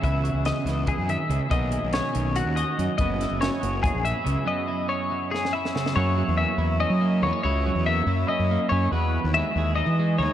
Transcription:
<<
  \new Staff \with { instrumentName = "Clean electric guitar" } { \time 7/8 \key fis \mixolydian \tempo 4 = 142 e''4 dis''4 gis'8 e''4 | dis''4 cis''4 fis'8 dis''4 | dis''4 cis''4 gis'8 e''4 | dis''4 cis''4 gis'8 e''4 |
cis''4 e''4 dis''4 cis''8 | cis''4 e''4 dis''4 cis''8 | b'4 e''4 dis''4 cis''8 | }
  \new Staff \with { instrumentName = "Clean electric guitar" } { \time 7/8 \key fis \mixolydian << { <e b e'>8 fis'2. | <dis ais cis' fis'>8 gis'8 cis'4. fis'4 | b8 e'8 cis'4. e'4 | b8 e'8 cis'4. e'4 |
<fis ais cis' e'>4 ais8 e'8 cis'8 ais8 b16 cis'16 | e'4 ais8 e'8 cis'8 ais8 cis'8 | fis'4 gis8 gis'8 dis'8 gis8 dis'8 | } \\ { cis4. e8 e8 dis8 cis8 | b,4. dis4. fis,8 | fis,4. fis4. cis8 | fis,4. fis4. cis8 |
fis,8 fis2. | fis,8 fis2. | e,2.~ e,8 | } >> }
  \new Staff \with { instrumentName = "Fingered electric bass" } { \clef bass \time 7/8 \key fis \mixolydian cis,8. cis,8 r16 cis,8. fis,8 r16 cis,16 r16 | b,,8. b,,8 r16 b,,8. dis,8 r16 fis,16 r16 | fis,,8. fis,,8 r16 fis,,8. ais,,8 r16 cis,16 r16 | r2. r8 |
fis,8. e,8 r16 e,8. fis8. e,16 r16 | cis,8. e,8. fis,8 r16 fis,8 r16 fis,8 | e,8. dis,8 r16 dis,8. e8. dis,16 r16 | }
  \new DrumStaff \with { instrumentName = "Drums" } \drummode { \time 7/8 <hh bd>8 hh8 <hh sn>8 <hh sn>8 <hh bd>8 hh8 hh8 | <hh bd>8 hh8 <hh sn>8 hh8 hh8 hh8 hh8 | <hh bd>8 <hh sn>8 <hh sn>8 hh8 <hh bd>8 hh8 hh8 | r4 r4 sn16 sn8 sn16 sn16 sn16 |
r4 r4 r4. | r4 r4 r4. | r4 r4 r4. | }
>>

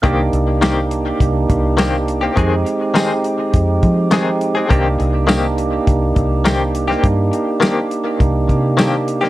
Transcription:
<<
  \new Staff \with { instrumentName = "Tonewheel organ" } { \time 4/4 \key c \minor \tempo 4 = 103 <bes d' ees' g'>1 | <aes c' ees' g'>1 | <bes d' ees' g'>1~ | <bes d' ees' g'>1 | }
  \new Staff \with { instrumentName = "Clean electric guitar" } { \time 4/4 \key c \minor <ees bes c' g'>16 r8. <ees bes c' g'>16 r4. r16 <ees bes c' g'>16 r8 <bes c' g'>16 | <ees aes c' aes'>16 r8. <ees aes c' aes'>16 r4. r16 <ees aes c' aes'>16 r8 <aes c' aes'>16 | <ees bes c' g'>16 r8. <ees bes c' g'>16 r4. r16 <ees bes c' g'>16 r8 <bes c' g'>16 | r4 <ees bes c' g'>16 r4. r16 <ees bes c' g'>16 r8 <bes c' g'>16 | }
  \new Staff \with { instrumentName = "Fingered electric bass" } { \clef bass \time 4/4 \key c \minor c,8 c,4. c,8 c,4. | f,8 r4. f,8 f4. | c,8 c,4. c,8 c,4. | g,8 r4. c,8 c4. | }
  \new DrumStaff \with { instrumentName = "Drums" } \drummode { \time 4/4 <hh bd>8 hh8 <hh sn tamb>8 hh8 <hh bd>8 <hh bd>8 <hh sn tamb>8 hh8 | <hh bd>8 hh8 <hh sn tamb>8 hh8 <hh bd>8 <hh bd>8 <hh sn tamb>8 hh8 | <hh bd>8 hh8 <hh sn tamb>8 hh8 <hh bd>8 <hh bd>8 <hh sn tamb>8 hh16 sn16 | <hh bd>8 hh8 <hh sn tamb>8 hh8 <hh bd>8 <hh bd>8 <hh sn tamb>8 hh16 sn16 | }
>>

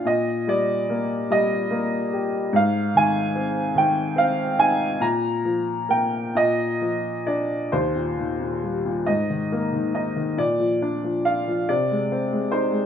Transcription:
<<
  \new Staff \with { instrumentName = "Upright piano" } { \time 6/8 \key ees \major \tempo 4. = 47 ees''8 d''4 ees''4 r8 | f''8 aes''4 g''8 f''8 aes''8 | bes''4 g''8 ees''4 d''8 | c''4. ees''4 ees''8 |
d''4 f''8 d''4 c''8 | }
  \new Staff \with { instrumentName = "Upright piano" } { \clef bass \time 6/8 \key ees \major bes,8 g8 bes8 g8 bes8 g'8 | aes,8 ees8 c'8 ees8 c'8 ees'8 | bes,8 f8 bes8 bes,8 f8 d'8 | ees,16 bes,16 ees16 bes,16 g16 bes,16 aes,16 ees16 bes16 ees16 ees'16 ees16 |
bes,16 f16 d'16 f16 f'16 f16 c16 aes16 c'16 aes16 ees'16 aes16 | }
>>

